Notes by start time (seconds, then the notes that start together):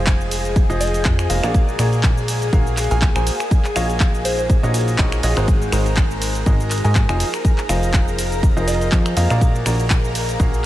Already playing: F1 F3 D#4 F4 G#4 C5 D#5 F5 G#5
0.07 kick, clap, closed hi-hat, shaker
0.21 shaker
0.31 open hi-hat, ride, shaker
0.45 closed hi-hat, shaker
0.56 kick, closed hi-hat, shaker
0.70 F1 F3 F4 G#4 C5 D#5, shaker
0.81 D#5, open hi-hat, ride, shaker
0.87 closed hi-hat
0.94 closed hi-hat, shaker
1.05 F2 F3 F4 G#4 C5 D#5, kick, clap, closed hi-hat, shaker
1.19 finger snap, shaker
1.30 F1 A#3 F4 G#4 C5 D#5 F5, open hi-hat, ride, shaker
1.43 A#1 A#3 F#4 G#4 A#4 D5 F5, finger snap, closed hi-hat, shaker
1.54 F5, kick, closed hi-hat, shaker
1.68 shaker
1.79 A#1 A#3 F#4 G#4 A#4 D5, finger snap, open hi-hat, ride, shaker
1.93 closed hi-hat, shaker
2.03 kick, clap, closed hi-hat, shaker
2.18 shaker
2.28 open hi-hat, ride, shaker
2.42 A#4, closed hi-hat, shaker
2.53 A#1 A#3 F#4 G#4 A#4 F5, kick, closed hi-hat, shaker
2.67 shaker
2.77 clap, open hi-hat, ride, shaker
2.84 closed hi-hat
2.91 A#1 A#3 F#4 G#4 A#4 F5 G#5, closed hi-hat, shaker
3.02 kick, clap, closed hi-hat, shaker
3.16 A#1 A#3 F#4 G#4 A#4 C5 G#5, finger snap, shaker
3.27 open hi-hat, ride, shaker
3.40 finger snap, closed hi-hat, shaker
3.51 D#4, kick, closed hi-hat, shaker
3.64 clap, shaker
3.75 A#1 A#3 F4 F#4 G#4 C#5 D#5 F5, finger snap, open hi-hat, ride, shaker
3.90 closed hi-hat, shaker
4.00 kick, clap, closed hi-hat, shaker
4.14 shaker
4.25 C5, open hi-hat, ride, shaker
4.39 C5, closed hi-hat, shaker
4.50 kick, closed hi-hat, shaker
4.63 A#1 A#3 F4 F#4 C#5 D#5, shaker
4.74 open hi-hat, ride, shaker
4.81 closed hi-hat
4.88 closed hi-hat, shaker
4.98 A#1 A#3 F4 F#4 C#5 D#5, kick, clap, closed hi-hat, shaker
5.12 finger snap, shaker
5.23 A#1 F4 F#4 C#5 D#5, open hi-hat, ride, shaker
5.37 G#1 G#3 F#4 G#4 A#4 C5, finger snap, shaker
5.48 A#4 A#5, kick, closed hi-hat, shaker
5.62 shaker
5.72 G#1 G#3 F#4 G#4 A#4 C5, finger snap, open hi-hat, ride, shaker
5.86 closed hi-hat, shaker
5.97 kick, clap, closed hi-hat, shaker
6.11 shaker
6.22 open hi-hat, ride, shaker
6.26 C5
6.35 closed hi-hat, shaker
6.46 G#1 G#3 F#4 G#4 A#4 D#5, kick, closed hi-hat, shaker
6.60 shaker
6.70 clap, open hi-hat, ride, shaker
6.78 closed hi-hat
6.84 G#2 G#3 F#4 G#4 A#4 D#5 G#5, closed hi-hat, shaker
6.95 kick, clap, closed hi-hat, shaker
7.09 F1 F3 F4 G#4 C5 D#5 G#5, finger snap, shaker
7.20 open hi-hat, ride, shaker
7.34 finger snap, closed hi-hat, shaker
7.45 kick, closed hi-hat, shaker
7.58 clap, shaker
7.69 F1 F3 F4 G#4 C5 D#5 F5, finger snap, open hi-hat, ride, shaker
7.83 closed hi-hat, shaker
7.94 kick, clap, closed hi-hat, shaker
8.08 shaker
8.19 open hi-hat, ride, shaker
8.32 closed hi-hat, shaker
8.43 kick, closed hi-hat, shaker
8.57 F1 F3 F4 G#4 C5 D#5, shaker
8.68 D#5, open hi-hat, ride, shaker
8.74 closed hi-hat
8.81 closed hi-hat, shaker
8.92 F2 F3 F4 G#4 C5 D#5, kick, clap, closed hi-hat, shaker
9.06 finger snap, shaker
9.17 F2 A#3 F4 G#4 C5 D#5 F5, open hi-hat, ride, shaker
9.30 A#1 A#3 F#4 G#4 A#4 D5 F5, finger snap, closed hi-hat, shaker
9.41 F5, kick, closed hi-hat, shaker
9.55 shaker
9.66 A#1 A#3 F#4 G#4 A#4 D5, finger snap, open hi-hat, ride, shaker
9.80 closed hi-hat, shaker
9.90 kick, clap, closed hi-hat, shaker
10.05 shaker
10.15 open hi-hat, ride, shaker
10.29 A#4, closed hi-hat, shaker
10.40 A#1 A#3 F#4 G#4 A#4 F5, kick, closed hi-hat, shaker
10.54 shaker